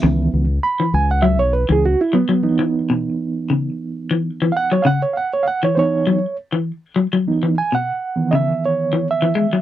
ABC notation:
X:1
M:4/4
L:1/16
Q:"Swing 16ths" 1/4=100
K:C#m
V:1 name="Reed electric piano"
e2 z2 b2 g f e c B G F E B,2- | B,6 z8 [^ef] c | [^ef] c [ef] c [ef] c [^Bc]4 z6 | z2 g f4 [de]2 c3 e4 |]
V:2 name="Reed electric piano"
[D,E,B,]2 z12 z2 | [E,B,D]16 | z6 [E,B,D]2 z8 | [E,B,D]2 z4 [D,E,B,]8- [D,E,B,]2 |]
V:3 name="Clean electric guitar" clef=bass
C,2 z3 E,2 z F,2 z E,2 z F, F,- | F, E,2 B,,2 z2 C,2 z2 E,2 E, z F, | C,2 z3 E,2 z F,2 z E,2 z F, F,- | F, E,2 B,,2 z2 C,2 z2 E,2 E, G, F, |]
V:4 name="Fingered electric bass" clef=bass
C,,2 C,,2 z2 C,,3 B,,,2 C,,2 z3 | z16 | z16 | z16 |]